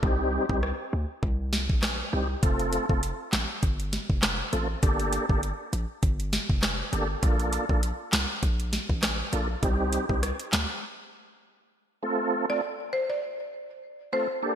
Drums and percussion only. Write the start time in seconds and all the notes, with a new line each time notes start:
0.03 kick
0.49 kick
0.63 cross-stick
1.23 kick
1.53 snare
1.70 kick
1.83 cross-stick, snare, clap
2.43 kick, closed hi-hat
2.60 closed hi-hat
2.73 closed hi-hat
2.89 kick
3.03 closed hi-hat
3.33 snare, clap, closed hi-hat
3.63 kick, closed hi-hat
3.80 closed hi-hat
3.93 snare, closed hi-hat
4.10 kick
4.23 cross-stick, snare, clap, closed hi-hat
4.53 closed hi-hat
4.83 kick, closed hi-hat
5.00 closed hi-hat
5.13 closed hi-hat
5.29 kick
5.43 closed hi-hat
5.73 closed hi-hat
6.03 kick, closed hi-hat
6.20 closed hi-hat
6.33 snare, closed hi-hat
6.50 kick
6.63 cross-stick, snare, clap, closed hi-hat
6.93 closed hi-hat
7.23 kick, closed hi-hat
7.40 closed hi-hat
7.53 closed hi-hat
7.69 kick
7.83 closed hi-hat
8.13 snare, clap, closed hi-hat
8.43 kick, closed hi-hat
8.60 closed hi-hat
8.73 snare, closed hi-hat
8.90 kick
9.03 cross-stick, snare, clap, closed hi-hat
9.33 closed hi-hat
9.63 kick, closed hi-hat
9.93 closed hi-hat
10.09 kick
10.23 cross-stick, closed hi-hat
10.40 closed hi-hat
10.53 snare, clap, closed hi-hat